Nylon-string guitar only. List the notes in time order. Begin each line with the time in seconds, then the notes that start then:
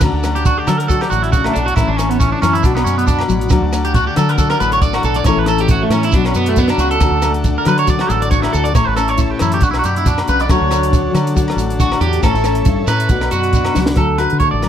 0.02 D3 F#4
0.25 A3
0.46 D4
0.67 F#3
0.90 F#4
1.12 A2
1.34 C#3
1.56 B2
1.79 A2 E3 C#4
2.02 C#4
2.22 E4
2.43 E3
2.65 B2 F#4
2.87 B3
3.28 F#3
3.51 D3 F#4
3.72 A3
3.96 D4
4.17 F#3
4.39 muted nylon-string guitar stroke
4.60 A2
5.26 A2 E3 C#4 E4 A4
5.50 C#4
5.72 E4
5.93 E3
6.15 B2 F#3 B3 D4 F#4
6.37 B3
6.60 B2
6.81 C#3
7.02 D3 F#4
7.25 A3
7.47 D4
7.67 F#3
7.88 F#4
8.09 A2
8.30 D4
8.74 A2 A4
8.96 C#4
9.18 E4
9.40 E3
9.62 B2 D4
9.84 B3
10.05 B2
10.27 C#3
10.48 D3 F#3 A3 D4 F#4
10.69 A3
10.92 D4
11.12 F#3
11.36 F#4
11.59 A2
11.81 D4
12.22 A2 C#4
12.35 E4
12.46 C#4
12.65 G2
12.88 A2
13.10 B2 F#4
13.33 B3
13.54 D4
13.75 F#3
13.97 D3 A3
14.19 F#4
14.42 A3
14.62 F#3